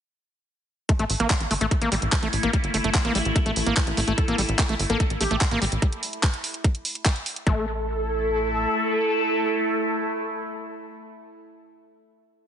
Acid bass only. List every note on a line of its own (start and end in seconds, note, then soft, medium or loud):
0.89 0.92 A3 medium
0.99 1.05 A3 loud
1.20 1.28 A#3 loud
1.30 1.33 G3 medium
1.51 1.54 A3 medium
1.61 1.66 A3 loud
1.82 1.89 A#3 loud
1.92 1.95 G3 medium
2.12 2.16 A3 medium
2.23 2.28 A3 loud
2.43 2.51 A#3 loud
2.54 2.57 G3 medium
2.74 2.77 A3 medium
2.84 2.90 A3 loud
3.05 3.13 A#3 loud
3.15 3.18 G3 medium
3.36 3.39 A3 medium
3.46 3.51 A3 loud
3.66 3.74 A#3 loud
3.77 3.80 G3 medium
3.97 4.00 A3 medium
4.08 4.13 A3 loud
4.28 4.36 A#3 loud
4.38 4.42 G3 medium
4.59 4.62 A3 medium
4.69 4.74 A3 loud
4.90 4.98 A#3 loud
5.00 5.03 G3 medium
5.21 5.24 A3 medium
5.31 5.36 A3 loud
5.51 5.59 A#3 loud
5.62 5.65 G3 medium
7.47 7.66 A3 medium